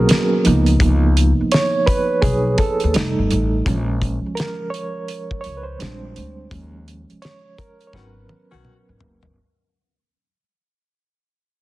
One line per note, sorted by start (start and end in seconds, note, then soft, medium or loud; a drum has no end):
0.00 0.46 F#3 medium
0.00 0.45 A#3 soft
0.00 0.45 B3 soft
0.00 0.46 C#4 medium
0.00 0.46 F#4 medium
0.00 0.39 G#4 medium
0.00 0.46 A#4 medium
0.00 0.45 B4 loud
0.09 snare loud
0.09 closed hi-hat loud
0.45 0.77 C#2 loud
0.45 1.47 F3 medium
0.45 1.48 A#3 soft
0.45 1.48 B3 soft
0.45 1.48 D#4 medium
0.45 closed hi-hat medium
0.66 closed hi-hat soft
0.80 1.32 C#2 loud
0.80 kick loud
0.80 closed hi-hat medium
1.17 closed hi-hat medium
1.41 muted upright bass stroke soft
1.52 1.88 C#5 loud
1.52 snare loud
1.52 closed hi-hat medium
1.86 2.23 B4 loud
1.86 kick loud
1.86 closed hi-hat medium
2.22 2.54 B1 loud
2.22 2.59 G#4 medium
2.22 kick loud
2.22 closed hi-hat medium
2.58 3.26 A4 medium
2.58 kick loud
2.58 closed hi-hat medium
2.80 2.94 D#2 medium
2.80 closed hi-hat soft
2.94 3.15 F1 medium
2.94 3.62 G3 medium
2.94 3.63 A3 medium
2.94 3.63 D#4 medium
2.94 snare loud
2.94 closed hi-hat loud
3.19 3.29 G1 medium
3.31 3.62 A1 medium
3.31 closed hi-hat medium
3.65 4.17 A#1 loud
3.65 5.76 F3 medium
3.65 5.76 G#3 medium
3.65 5.76 C#4 medium
3.65 kick loud
3.65 closed hi-hat medium
4.02 kick medium
4.02 closed hi-hat medium
4.26 muted upright bass stroke medium
4.35 4.73 A#4 loud
4.35 closed hi-hat medium
4.40 snare loud
4.70 5.40 C#5 loud
4.70 closed hi-hat medium
5.08 closed hi-hat medium
5.31 kick medium
5.41 5.56 C#5 medium
5.41 closed hi-hat medium
5.46 5.77 C#2 medium
5.57 5.66 B4 medium
5.63 6.10 C5 medium
5.79 6.12 A#1 medium
5.79 6.47 G3 medium
5.79 6.47 G#3 medium
5.79 6.47 C4 medium
5.79 6.48 D4 medium
5.79 snare loud
5.79 closed hi-hat loud
6.16 6.48 D2 medium
6.16 closed hi-hat medium
6.51 7.03 D#2 loud
6.51 7.54 F3 medium
6.51 7.54 G#3 soft
6.51 7.55 C#4 medium
6.51 kick loud
6.51 closed hi-hat medium
6.88 closed hi-hat medium
7.10 muted upright bass stroke soft
7.10 closed hi-hat soft
7.22 7.59 C#5 loud
7.22 snare loud
7.22 closed hi-hat medium
7.58 7.90 A#4 medium
7.58 kick loud
7.58 closed hi-hat medium
7.81 closed hi-hat soft
7.87 7.93 C#5 medium
7.93 8.26 G#1 loud
7.93 8.10 D#3 medium
7.93 9.32 F#3 medium
7.93 9.33 B3 medium
7.93 8.10 C#4 medium
7.93 9.33 C#4 medium
7.93 8.10 F#4 medium
7.93 9.33 A#4 medium
7.93 8.97 B4 medium
7.93 kick medium
7.93 snare medium
8.29 high tom medium
8.51 8.65 B1 medium
8.51 8.74 D#3 medium
8.51 8.74 C#4 medium
8.51 8.74 F#4 medium
8.51 high tom medium
8.65 mid tom medium
8.89 9.03 G#1 medium
9.01 9.22 F#1 medium
9.01 floor tom loud
9.23 9.36 G1 medium
9.23 floor tom medium